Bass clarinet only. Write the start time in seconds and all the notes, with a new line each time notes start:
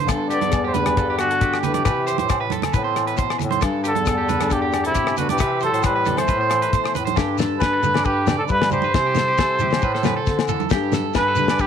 0.09 G2
0.42 E2
1.63 G2
1.86 C3
2.19 A2
2.74 A2
3.40 A2
3.62 G2
3.96 E2
5.17 G2
5.40 C3
5.72 A2
6.28 A2
6.95 A2
7.17 G2
7.61 G2
7.83 G2
8.50 G3
8.94 C3
9.39 C3
9.61 C3
9.82 A2
10.27 D3
10.71 G2
11.15 G2
11.36 G2